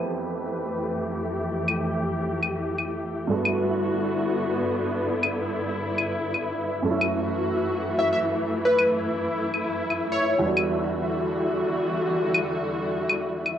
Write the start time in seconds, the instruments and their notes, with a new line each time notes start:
Already playing: upright piano F2 A3 B3 C4 E4 G4, string section F2 E3 A3 G4 B4, synth texture E4 E5
1.68 claves
2.43 claves
2.78 claves
3.28 upright piano G2 A3, string section G2 D3 B3 F#4
3.33 upright piano B3 F#4
3.45 claves
5.09 string section E4
5.23 claves
5.98 claves
6.34 claves
6.82 upright piano F#2 A3, string section F#4
6.87 string section F#2 E3 A3, upright piano C#4
6.91 upright piano E4
7.01 claves
7.99 digital synth lead E5
8.13 digital synth lead E5
8.64 string section E4, digital synth lead B4
8.78 claves
9.54 claves
9.90 claves
10.12 digital synth lead C#5
10.39 upright piano E2 G3
10.43 string section E2 D3 G3 F#4, upright piano B3 D4 F#4
10.57 claves
12.34 claves
13.09 claves
13.46 claves